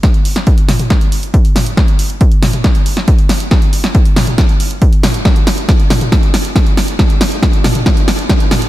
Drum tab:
HH |xxoxxxoxxxoxxxox|xxoxxxoxxxoxxxox|xxoxxxoxxxoxxxox|xxoxxxoxxxoxxxox|
SD |o--o--o-o-----o-|o-----o-o--o--o-|o--o--o-o-----o-|o-o-o-o-o-o-o-o-|
T2 |------oo------o-|------oo--------|------oo------o-|------oo--------|
BD |o---o---o---o---|o---o---o---o---|o---o---o---o---|o---o---o---o---|

HH |xxoxxxoxxxoxxxox|
SD |o-o-o-o-o-o-o-o-|
T2 |------oo------o-|
BD |o---o---o---o---|